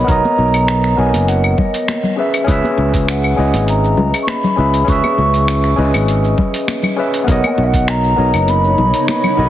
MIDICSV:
0, 0, Header, 1, 6, 480
1, 0, Start_track
1, 0, Key_signature, 5, "major"
1, 0, Tempo, 600000
1, 66, Time_signature, 4, 2, 24, 8
1, 7592, End_track
2, 0, Start_track
2, 0, Title_t, "Flute"
2, 0, Program_c, 0, 73
2, 0, Note_on_c, 0, 83, 103
2, 72, Note_on_c, 0, 82, 109
2, 84, Note_off_c, 0, 83, 0
2, 789, Note_on_c, 0, 80, 90
2, 801, Note_off_c, 0, 82, 0
2, 1028, Note_on_c, 0, 78, 92
2, 1040, Note_off_c, 0, 80, 0
2, 1268, Note_on_c, 0, 75, 88
2, 1280, Note_off_c, 0, 78, 0
2, 1745, Note_off_c, 0, 75, 0
2, 1750, Note_on_c, 0, 76, 79
2, 2196, Note_off_c, 0, 76, 0
2, 2471, Note_on_c, 0, 78, 91
2, 2916, Note_off_c, 0, 78, 0
2, 2950, Note_on_c, 0, 82, 92
2, 3345, Note_off_c, 0, 82, 0
2, 3381, Note_on_c, 0, 85, 77
2, 3435, Note_on_c, 0, 83, 95
2, 3447, Note_off_c, 0, 85, 0
2, 3914, Note_on_c, 0, 85, 104
2, 3926, Note_off_c, 0, 83, 0
2, 4630, Note_off_c, 0, 85, 0
2, 5597, Note_on_c, 0, 76, 84
2, 5838, Note_on_c, 0, 78, 100
2, 5850, Note_off_c, 0, 76, 0
2, 5974, Note_on_c, 0, 80, 92
2, 5982, Note_off_c, 0, 78, 0
2, 6001, Note_on_c, 0, 78, 100
2, 6009, Note_off_c, 0, 80, 0
2, 6110, Note_on_c, 0, 76, 92
2, 6118, Note_off_c, 0, 78, 0
2, 6137, Note_on_c, 0, 78, 100
2, 6145, Note_off_c, 0, 76, 0
2, 6320, Note_on_c, 0, 82, 112
2, 6332, Note_off_c, 0, 78, 0
2, 6796, Note_on_c, 0, 83, 108
2, 6808, Note_off_c, 0, 82, 0
2, 7271, Note_off_c, 0, 83, 0
2, 7278, Note_on_c, 0, 83, 106
2, 7592, Note_off_c, 0, 83, 0
2, 7592, End_track
3, 0, Start_track
3, 0, Title_t, "Tine electric piano"
3, 0, Program_c, 1, 4
3, 0, Control_c, 1, 64, 127
3, 0, Note_on_c, 1, 59, 75
3, 0, Note_on_c, 1, 70, 60
3, 0, Note_on_c, 1, 73, 68
3, 0, Note_on_c, 1, 75, 74
3, 36, Note_off_c, 1, 59, 0
3, 36, Note_on_c, 1, 59, 82
3, 54, Note_off_c, 1, 70, 0
3, 54, Note_on_c, 1, 70, 76
3, 74, Note_off_c, 1, 73, 0
3, 74, Note_on_c, 1, 73, 74
3, 92, Note_off_c, 1, 75, 0
3, 92, Note_on_c, 1, 75, 96
3, 743, Note_off_c, 1, 59, 0
3, 752, Note_off_c, 1, 70, 0
3, 762, Note_off_c, 1, 73, 0
3, 771, Note_on_c, 1, 59, 66
3, 772, Note_off_c, 1, 75, 0
3, 778, Note_on_c, 1, 70, 61
3, 789, Note_on_c, 1, 73, 57
3, 799, Note_on_c, 1, 75, 69
3, 877, Note_off_c, 1, 59, 0
3, 880, Note_off_c, 1, 70, 0
3, 886, Note_off_c, 1, 73, 0
3, 891, Note_off_c, 1, 75, 0
3, 1729, Note_on_c, 1, 61, 70
3, 1738, Note_on_c, 1, 68, 63
3, 1749, Note_on_c, 1, 71, 67
3, 1756, Control_c, 1, 64, 0
3, 1759, Note_on_c, 1, 76, 79
3, 1880, Control_c, 1, 64, 127
3, 1945, Note_off_c, 1, 61, 0
3, 1954, Note_on_c, 1, 61, 89
3, 1955, Note_off_c, 1, 68, 0
3, 1960, Note_off_c, 1, 71, 0
3, 1965, Note_off_c, 1, 76, 0
3, 1974, Note_on_c, 1, 68, 79
3, 1992, Note_on_c, 1, 71, 79
3, 2012, Note_on_c, 1, 76, 91
3, 2663, Note_off_c, 1, 61, 0
3, 2673, Note_off_c, 1, 68, 0
3, 2682, Note_off_c, 1, 71, 0
3, 2692, Note_off_c, 1, 76, 0
3, 2692, Note_on_c, 1, 61, 67
3, 2699, Note_on_c, 1, 68, 65
3, 2709, Note_on_c, 1, 71, 62
3, 2718, Note_on_c, 1, 75, 75
3, 2797, Note_off_c, 1, 61, 0
3, 2801, Note_off_c, 1, 68, 0
3, 2806, Note_off_c, 1, 71, 0
3, 2810, Note_off_c, 1, 75, 0
3, 3649, Note_on_c, 1, 61, 73
3, 3659, Note_on_c, 1, 68, 65
3, 3667, Note_on_c, 1, 71, 66
3, 3679, Note_on_c, 1, 76, 79
3, 3867, Note_off_c, 1, 61, 0
3, 3875, Note_off_c, 1, 68, 0
3, 3877, Note_on_c, 1, 61, 84
3, 3879, Note_off_c, 1, 71, 0
3, 3885, Note_off_c, 1, 76, 0
3, 3896, Note_on_c, 1, 68, 73
3, 3915, Note_on_c, 1, 71, 73
3, 3935, Note_on_c, 1, 76, 97
3, 4584, Note_off_c, 1, 61, 0
3, 4593, Note_off_c, 1, 68, 0
3, 4603, Note_off_c, 1, 71, 0
3, 4607, Note_on_c, 1, 61, 68
3, 4613, Note_off_c, 1, 76, 0
3, 4616, Note_on_c, 1, 68, 62
3, 4627, Note_on_c, 1, 71, 60
3, 4635, Note_on_c, 1, 75, 72
3, 4715, Note_off_c, 1, 61, 0
3, 4719, Note_off_c, 1, 68, 0
3, 4725, Note_off_c, 1, 71, 0
3, 4729, Note_off_c, 1, 75, 0
3, 5571, Note_on_c, 1, 61, 73
3, 5579, Note_on_c, 1, 68, 61
3, 5589, Note_on_c, 1, 71, 67
3, 5598, Note_on_c, 1, 76, 73
3, 5791, Note_off_c, 1, 61, 0
3, 5793, Note_on_c, 1, 59, 86
3, 5795, Note_off_c, 1, 68, 0
3, 5800, Note_off_c, 1, 71, 0
3, 5805, Note_off_c, 1, 76, 0
3, 5814, Note_on_c, 1, 70, 75
3, 5833, Note_on_c, 1, 73, 78
3, 5838, Control_c, 1, 64, 0
3, 5852, Note_on_c, 1, 75, 92
3, 5977, Control_c, 1, 64, 127
3, 6502, Note_off_c, 1, 59, 0
3, 6512, Note_off_c, 1, 70, 0
3, 6522, Note_off_c, 1, 73, 0
3, 6528, Note_on_c, 1, 59, 70
3, 6532, Note_off_c, 1, 75, 0
3, 6539, Note_on_c, 1, 70, 62
3, 6546, Note_on_c, 1, 73, 65
3, 6556, Note_on_c, 1, 75, 74
3, 6635, Note_off_c, 1, 59, 0
3, 6640, Note_off_c, 1, 70, 0
3, 6644, Note_off_c, 1, 73, 0
3, 6649, Note_off_c, 1, 75, 0
3, 7489, Note_on_c, 1, 59, 68
3, 7498, Note_on_c, 1, 70, 66
3, 7509, Note_on_c, 1, 73, 65
3, 7517, Note_on_c, 1, 75, 79
3, 7592, Note_off_c, 1, 59, 0
3, 7592, Note_off_c, 1, 70, 0
3, 7592, Note_off_c, 1, 73, 0
3, 7592, Note_off_c, 1, 75, 0
3, 7592, End_track
4, 0, Start_track
4, 0, Title_t, "Ambient pad"
4, 0, Program_c, 2, 92
4, 5822, Note_on_c, 2, 63, 88
4, 5823, Note_on_c, 2, 59, 78
4, 5824, Note_on_c, 2, 73, 75
4, 5825, Note_on_c, 2, 49, 82
4, 7592, Note_off_c, 2, 49, 0
4, 7592, Note_off_c, 2, 59, 0
4, 7592, Note_off_c, 2, 63, 0
4, 7592, Note_off_c, 2, 73, 0
4, 7592, End_track
5, 0, Start_track
5, 0, Title_t, "Fretless electric bass"
5, 0, Program_c, 3, 35
5, 65, Note_on_c, 3, 35, 95
5, 166, Note_off_c, 3, 35, 0
5, 306, Note_on_c, 3, 35, 92
5, 750, Note_off_c, 3, 35, 0
5, 784, Note_on_c, 3, 35, 82
5, 886, Note_off_c, 3, 35, 0
5, 911, Note_on_c, 3, 30, 85
5, 1229, Note_off_c, 3, 30, 0
5, 1984, Note_on_c, 3, 37, 95
5, 2086, Note_off_c, 3, 37, 0
5, 2221, Note_on_c, 3, 37, 99
5, 2667, Note_off_c, 3, 37, 0
5, 2704, Note_on_c, 3, 37, 77
5, 2806, Note_off_c, 3, 37, 0
5, 2829, Note_on_c, 3, 32, 83
5, 3148, Note_off_c, 3, 32, 0
5, 3181, Note_on_c, 3, 37, 81
5, 3285, Note_off_c, 3, 37, 0
5, 3663, Note_on_c, 3, 37, 71
5, 3859, Note_off_c, 3, 37, 0
5, 3904, Note_on_c, 3, 37, 91
5, 4006, Note_off_c, 3, 37, 0
5, 4143, Note_on_c, 3, 37, 90
5, 4588, Note_off_c, 3, 37, 0
5, 4622, Note_on_c, 3, 37, 80
5, 4725, Note_off_c, 3, 37, 0
5, 4749, Note_on_c, 3, 32, 79
5, 5068, Note_off_c, 3, 32, 0
5, 5822, Note_on_c, 3, 35, 85
5, 5925, Note_off_c, 3, 35, 0
5, 6062, Note_on_c, 3, 35, 93
5, 6508, Note_off_c, 3, 35, 0
5, 6544, Note_on_c, 3, 35, 78
5, 6646, Note_off_c, 3, 35, 0
5, 6672, Note_on_c, 3, 30, 87
5, 6990, Note_off_c, 3, 30, 0
5, 7024, Note_on_c, 3, 35, 82
5, 7126, Note_off_c, 3, 35, 0
5, 7504, Note_on_c, 3, 35, 72
5, 7592, Note_off_c, 3, 35, 0
5, 7592, End_track
6, 0, Start_track
6, 0, Title_t, "Drums"
6, 66, Note_on_c, 9, 36, 114
6, 68, Note_on_c, 9, 42, 41
6, 71, Note_on_c, 9, 82, 55
6, 146, Note_off_c, 9, 36, 0
6, 148, Note_off_c, 9, 42, 0
6, 151, Note_off_c, 9, 82, 0
6, 196, Note_on_c, 9, 82, 31
6, 200, Note_on_c, 9, 63, 93
6, 276, Note_off_c, 9, 82, 0
6, 280, Note_off_c, 9, 63, 0
6, 433, Note_on_c, 9, 42, 49
6, 433, Note_on_c, 9, 75, 62
6, 436, Note_on_c, 9, 82, 54
6, 513, Note_off_c, 9, 42, 0
6, 513, Note_off_c, 9, 75, 0
6, 516, Note_off_c, 9, 82, 0
6, 546, Note_on_c, 9, 26, 95
6, 546, Note_on_c, 9, 42, 41
6, 550, Note_on_c, 9, 82, 56
6, 626, Note_off_c, 9, 26, 0
6, 626, Note_off_c, 9, 42, 0
6, 630, Note_off_c, 9, 82, 0
6, 673, Note_on_c, 9, 26, 30
6, 676, Note_on_c, 9, 82, 33
6, 753, Note_off_c, 9, 26, 0
6, 756, Note_off_c, 9, 82, 0
6, 908, Note_on_c, 9, 63, 64
6, 913, Note_on_c, 9, 42, 52
6, 916, Note_on_c, 9, 82, 65
6, 988, Note_off_c, 9, 63, 0
6, 993, Note_off_c, 9, 42, 0
6, 996, Note_off_c, 9, 82, 0
6, 1027, Note_on_c, 9, 42, 38
6, 1030, Note_on_c, 9, 82, 51
6, 1107, Note_off_c, 9, 42, 0
6, 1110, Note_off_c, 9, 82, 0
6, 1153, Note_on_c, 9, 75, 66
6, 1156, Note_on_c, 9, 82, 31
6, 1233, Note_off_c, 9, 75, 0
6, 1236, Note_off_c, 9, 82, 0
6, 1264, Note_on_c, 9, 36, 95
6, 1266, Note_on_c, 9, 64, 83
6, 1344, Note_off_c, 9, 36, 0
6, 1346, Note_off_c, 9, 64, 0
6, 1393, Note_on_c, 9, 42, 52
6, 1396, Note_on_c, 9, 82, 61
6, 1473, Note_off_c, 9, 42, 0
6, 1476, Note_off_c, 9, 82, 0
6, 1506, Note_on_c, 9, 63, 85
6, 1507, Note_on_c, 9, 26, 102
6, 1507, Note_on_c, 9, 42, 39
6, 1510, Note_on_c, 9, 82, 52
6, 1586, Note_off_c, 9, 63, 0
6, 1587, Note_off_c, 9, 26, 0
6, 1587, Note_off_c, 9, 42, 0
6, 1590, Note_off_c, 9, 82, 0
6, 1628, Note_on_c, 9, 64, 89
6, 1638, Note_on_c, 9, 82, 31
6, 1708, Note_off_c, 9, 64, 0
6, 1718, Note_off_c, 9, 82, 0
6, 1871, Note_on_c, 9, 42, 56
6, 1871, Note_on_c, 9, 75, 73
6, 1874, Note_on_c, 9, 82, 65
6, 1951, Note_off_c, 9, 42, 0
6, 1951, Note_off_c, 9, 75, 0
6, 1954, Note_off_c, 9, 82, 0
6, 1984, Note_on_c, 9, 36, 115
6, 1986, Note_on_c, 9, 42, 43
6, 1989, Note_on_c, 9, 82, 55
6, 2064, Note_off_c, 9, 36, 0
6, 2066, Note_off_c, 9, 42, 0
6, 2069, Note_off_c, 9, 82, 0
6, 2112, Note_on_c, 9, 63, 96
6, 2116, Note_on_c, 9, 82, 30
6, 2192, Note_off_c, 9, 63, 0
6, 2196, Note_off_c, 9, 82, 0
6, 2350, Note_on_c, 9, 36, 96
6, 2352, Note_on_c, 9, 42, 47
6, 2355, Note_on_c, 9, 82, 58
6, 2430, Note_off_c, 9, 36, 0
6, 2432, Note_off_c, 9, 42, 0
6, 2435, Note_off_c, 9, 82, 0
6, 2468, Note_on_c, 9, 26, 96
6, 2468, Note_on_c, 9, 42, 43
6, 2471, Note_on_c, 9, 82, 57
6, 2548, Note_off_c, 9, 26, 0
6, 2548, Note_off_c, 9, 42, 0
6, 2551, Note_off_c, 9, 82, 0
6, 2594, Note_on_c, 9, 75, 72
6, 2597, Note_on_c, 9, 82, 35
6, 2674, Note_off_c, 9, 75, 0
6, 2677, Note_off_c, 9, 82, 0
6, 2830, Note_on_c, 9, 42, 47
6, 2830, Note_on_c, 9, 63, 65
6, 2834, Note_on_c, 9, 82, 62
6, 2910, Note_off_c, 9, 42, 0
6, 2910, Note_off_c, 9, 63, 0
6, 2914, Note_off_c, 9, 82, 0
6, 2945, Note_on_c, 9, 42, 40
6, 2948, Note_on_c, 9, 82, 56
6, 3025, Note_off_c, 9, 42, 0
6, 3028, Note_off_c, 9, 82, 0
6, 3075, Note_on_c, 9, 82, 31
6, 3155, Note_off_c, 9, 82, 0
6, 3179, Note_on_c, 9, 64, 92
6, 3259, Note_off_c, 9, 64, 0
6, 3312, Note_on_c, 9, 42, 51
6, 3312, Note_on_c, 9, 75, 73
6, 3315, Note_on_c, 9, 82, 64
6, 3392, Note_off_c, 9, 42, 0
6, 3392, Note_off_c, 9, 75, 0
6, 3395, Note_off_c, 9, 82, 0
6, 3418, Note_on_c, 9, 63, 90
6, 3425, Note_on_c, 9, 26, 94
6, 3425, Note_on_c, 9, 42, 42
6, 3428, Note_on_c, 9, 82, 54
6, 3498, Note_off_c, 9, 63, 0
6, 3505, Note_off_c, 9, 26, 0
6, 3505, Note_off_c, 9, 42, 0
6, 3508, Note_off_c, 9, 82, 0
6, 3552, Note_on_c, 9, 64, 90
6, 3554, Note_on_c, 9, 82, 31
6, 3632, Note_off_c, 9, 64, 0
6, 3634, Note_off_c, 9, 82, 0
6, 3790, Note_on_c, 9, 42, 51
6, 3793, Note_on_c, 9, 82, 64
6, 3870, Note_off_c, 9, 42, 0
6, 3873, Note_off_c, 9, 82, 0
6, 3904, Note_on_c, 9, 36, 121
6, 3904, Note_on_c, 9, 42, 42
6, 3907, Note_on_c, 9, 82, 57
6, 3984, Note_off_c, 9, 36, 0
6, 3984, Note_off_c, 9, 42, 0
6, 3987, Note_off_c, 9, 82, 0
6, 4030, Note_on_c, 9, 63, 89
6, 4031, Note_on_c, 9, 75, 67
6, 4034, Note_on_c, 9, 82, 30
6, 4110, Note_off_c, 9, 63, 0
6, 4111, Note_off_c, 9, 75, 0
6, 4114, Note_off_c, 9, 82, 0
6, 4271, Note_on_c, 9, 42, 44
6, 4275, Note_on_c, 9, 82, 57
6, 4351, Note_off_c, 9, 42, 0
6, 4355, Note_off_c, 9, 82, 0
6, 4386, Note_on_c, 9, 26, 96
6, 4386, Note_on_c, 9, 42, 42
6, 4389, Note_on_c, 9, 82, 56
6, 4466, Note_off_c, 9, 26, 0
6, 4466, Note_off_c, 9, 42, 0
6, 4469, Note_off_c, 9, 82, 0
6, 4511, Note_on_c, 9, 26, 27
6, 4515, Note_on_c, 9, 82, 33
6, 4591, Note_off_c, 9, 26, 0
6, 4595, Note_off_c, 9, 82, 0
6, 4752, Note_on_c, 9, 63, 59
6, 4753, Note_on_c, 9, 42, 48
6, 4753, Note_on_c, 9, 75, 68
6, 4756, Note_on_c, 9, 82, 63
6, 4832, Note_off_c, 9, 63, 0
6, 4833, Note_off_c, 9, 42, 0
6, 4833, Note_off_c, 9, 75, 0
6, 4836, Note_off_c, 9, 82, 0
6, 4866, Note_on_c, 9, 42, 37
6, 4869, Note_on_c, 9, 82, 55
6, 4946, Note_off_c, 9, 42, 0
6, 4949, Note_off_c, 9, 82, 0
6, 4995, Note_on_c, 9, 82, 29
6, 5075, Note_off_c, 9, 82, 0
6, 5101, Note_on_c, 9, 64, 87
6, 5103, Note_on_c, 9, 36, 102
6, 5181, Note_off_c, 9, 64, 0
6, 5183, Note_off_c, 9, 36, 0
6, 5232, Note_on_c, 9, 42, 49
6, 5236, Note_on_c, 9, 82, 66
6, 5312, Note_off_c, 9, 42, 0
6, 5316, Note_off_c, 9, 82, 0
6, 5342, Note_on_c, 9, 63, 83
6, 5346, Note_on_c, 9, 26, 98
6, 5346, Note_on_c, 9, 42, 41
6, 5349, Note_on_c, 9, 82, 54
6, 5422, Note_off_c, 9, 63, 0
6, 5426, Note_off_c, 9, 26, 0
6, 5426, Note_off_c, 9, 42, 0
6, 5429, Note_off_c, 9, 82, 0
6, 5463, Note_on_c, 9, 64, 73
6, 5470, Note_on_c, 9, 75, 70
6, 5474, Note_on_c, 9, 82, 28
6, 5543, Note_off_c, 9, 64, 0
6, 5550, Note_off_c, 9, 75, 0
6, 5554, Note_off_c, 9, 82, 0
6, 5710, Note_on_c, 9, 42, 50
6, 5713, Note_on_c, 9, 82, 67
6, 5790, Note_off_c, 9, 42, 0
6, 5793, Note_off_c, 9, 82, 0
6, 5823, Note_on_c, 9, 36, 114
6, 5825, Note_on_c, 9, 42, 42
6, 5828, Note_on_c, 9, 82, 52
6, 5903, Note_off_c, 9, 36, 0
6, 5905, Note_off_c, 9, 42, 0
6, 5908, Note_off_c, 9, 82, 0
6, 5952, Note_on_c, 9, 63, 87
6, 5952, Note_on_c, 9, 75, 72
6, 5956, Note_on_c, 9, 82, 30
6, 6032, Note_off_c, 9, 63, 0
6, 6032, Note_off_c, 9, 75, 0
6, 6036, Note_off_c, 9, 82, 0
6, 6189, Note_on_c, 9, 36, 96
6, 6191, Note_on_c, 9, 42, 45
6, 6194, Note_on_c, 9, 82, 58
6, 6269, Note_off_c, 9, 36, 0
6, 6271, Note_off_c, 9, 42, 0
6, 6274, Note_off_c, 9, 82, 0
6, 6304, Note_on_c, 9, 26, 93
6, 6304, Note_on_c, 9, 42, 40
6, 6307, Note_on_c, 9, 82, 52
6, 6384, Note_off_c, 9, 26, 0
6, 6384, Note_off_c, 9, 42, 0
6, 6387, Note_off_c, 9, 82, 0
6, 6433, Note_on_c, 9, 82, 31
6, 6513, Note_off_c, 9, 82, 0
6, 6670, Note_on_c, 9, 42, 45
6, 6670, Note_on_c, 9, 75, 67
6, 6672, Note_on_c, 9, 63, 62
6, 6674, Note_on_c, 9, 82, 60
6, 6750, Note_off_c, 9, 42, 0
6, 6750, Note_off_c, 9, 75, 0
6, 6752, Note_off_c, 9, 63, 0
6, 6754, Note_off_c, 9, 82, 0
6, 6784, Note_on_c, 9, 42, 38
6, 6787, Note_on_c, 9, 82, 50
6, 6864, Note_off_c, 9, 42, 0
6, 6867, Note_off_c, 9, 82, 0
6, 6914, Note_on_c, 9, 82, 29
6, 6994, Note_off_c, 9, 82, 0
6, 7026, Note_on_c, 9, 64, 92
6, 7106, Note_off_c, 9, 64, 0
6, 7150, Note_on_c, 9, 42, 53
6, 7153, Note_on_c, 9, 82, 65
6, 7230, Note_off_c, 9, 42, 0
6, 7233, Note_off_c, 9, 82, 0
6, 7266, Note_on_c, 9, 26, 96
6, 7266, Note_on_c, 9, 42, 40
6, 7267, Note_on_c, 9, 63, 88
6, 7269, Note_on_c, 9, 82, 54
6, 7346, Note_off_c, 9, 26, 0
6, 7346, Note_off_c, 9, 42, 0
6, 7347, Note_off_c, 9, 63, 0
6, 7349, Note_off_c, 9, 82, 0
6, 7389, Note_on_c, 9, 64, 77
6, 7391, Note_on_c, 9, 75, 73
6, 7394, Note_on_c, 9, 82, 30
6, 7469, Note_off_c, 9, 64, 0
6, 7471, Note_off_c, 9, 75, 0
6, 7474, Note_off_c, 9, 82, 0
6, 7592, End_track
0, 0, End_of_file